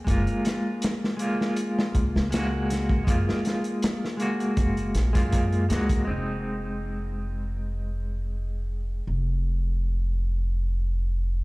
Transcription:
0.05 upright bass F#1, clean electric guitar G#3 A#3, kick, closed hi-hat
0.10 clean electric guitar F4
0.27 closed hi-hat
0.45 snare, closed hi-hat
0.82 snare, closed hi-hat
1.04 snare
1.17 clean electric guitar G#3 A#3, closed hi-hat
1.22 clean electric guitar F4
1.41 snare
1.56 closed hi-hat
1.79 snare
1.95 upright bass C#2, kick, closed hi-hat
2.16 upright bass C#2, snare
2.31 clean electric guitar G#3 A#3 F#4, snare, closed hi-hat
2.70 snare, closed hi-hat
2.89 kick
3.04 upright bass F#1, clean electric guitar G#3 A#3, kick, closed hi-hat
3.10 clean electric guitar F4
3.29 snare
3.45 snare, closed hi-hat
3.64 closed hi-hat
3.82 snare, closed hi-hat
4.05 snare
4.17 clean electric guitar G#3 A#3, closed hi-hat
4.22 clean electric guitar F#4
4.40 closed hi-hat
4.57 upright bass F#1, kick, closed hi-hat
4.77 closed hi-hat
4.94 upright bass A#1, snare, closed hi-hat
5.13 upright bass F#2, clean electric guitar G#3 A#3 F4, kick, closed hi-hat
5.32 kick, closed hi-hat
5.52 closed hi-hat
5.69 upright bass C#2, clean electric guitar G#3 A#3 F#4, snare, closed hi-hat
5.89 kick, closed hi-hat
6.05 upright bass F1, clean electric guitar G#3 C4
6.10 clean electric guitar D#4
9.07 upright bass F1

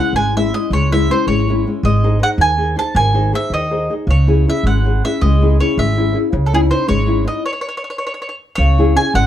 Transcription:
Already playing: nylon-string guitar G#3 C#4 E4, mandolin F#5
0.13 upright bass G#1, nylon-string guitar G#3, mandolin G#5
0.36 nylon-string guitar G#3 C#4 E4, mandolin E5
0.53 nylon-string guitar G#3 C#4 E4, mandolin D#5
0.70 upright bass C#2, nylon-string guitar G#3, mandolin C#5
0.92 nylon-string guitar G#3 C#4 E4, mandolin E5
1.10 nylon-string guitar G#3 C#4 E4, mandolin C5
1.27 upright bass G#1, nylon-string guitar G#3, mandolin C#5
1.48 nylon-string guitar G#3 C#4 E4
1.67 nylon-string guitar G#3 C#4 E4
1.83 upright bass G#1, nylon-string guitar G#3, mandolin D#5
2.04 nylon-string guitar D#4 G#4 C5
2.19 nylon-string guitar D#4 G#4 C5
2.23 mandolin F#5
2.38 upright bass D#2, nylon-string guitar D#3, mandolin G#5
2.57 nylon-string guitar D#4 G#4 C5
2.75 nylon-string guitar D#4 G#4 C5, mandolin A5
2.95 upright bass G#1, nylon-string guitar D#3, mandolin G#5
3.14 nylon-string guitar D#4 G#4 C5
3.32 nylon-string guitar D#4 G#4 C5, mandolin E5
3.50 upright bass D#2, nylon-string guitar D#3, mandolin D#5
3.71 nylon-string guitar D#4 G#4 C5
3.90 nylon-string guitar D#4 G#4 C5
4.07 upright bass C#2, nylon-string guitar C#3, mandolin C#5
4.27 nylon-string guitar C#4 E4 G#4
4.48 nylon-string guitar C#4 E4 G#4, mandolin E5
4.63 upright bass G#1, nylon-string guitar G#3, mandolin F#5
4.85 nylon-string guitar C#4 E4 G#4
5.05 nylon-string guitar C#4 E4 G#4, mandolin E5
5.21 upright bass C#2, nylon-string guitar G#3, mandolin D#5
5.41 nylon-string guitar C#4 E4 G#4
5.60 nylon-string guitar C#4 E4 G#4, mandolin C#5
5.78 upright bass G#1, nylon-string guitar G#3, mandolin E5
5.97 nylon-string guitar C#4 E4 G#4
6.13 nylon-string guitar C#4 E4 G#4
6.32 upright bass C#2, nylon-string guitar C#3
6.46 mandolin A4
6.53 nylon-string guitar C#4 D#4 E4, mandolin G#4
6.70 nylon-string guitar C#4 D#4 E4, mandolin C5
6.88 upright bass G#1, nylon-string guitar G#3, mandolin C#5
7.06 nylon-string guitar C#4 D#4 E4
7.24 nylon-string guitar C#4 D#4 E4, mandolin D#5
7.46 mandolin C#5
7.53 mandolin C#5
7.61 mandolin C#5
7.69 mandolin C#5
7.77 mandolin C#5
7.84 mandolin C#5
7.90 mandolin C#5
7.98 mandolin C#5
8.07 mandolin C#5
8.14 mandolin C#5
8.22 mandolin C#5
8.29 mandolin C#5
8.55 upright bass C#2, nylon-string guitar C#3, mandolin C#5
8.78 nylon-string guitar C#4 E4 G#4
8.95 nylon-string guitar C#4 E4 G#4, mandolin G#5
9.14 upright bass G#1, nylon-string guitar G#3, mandolin F#5

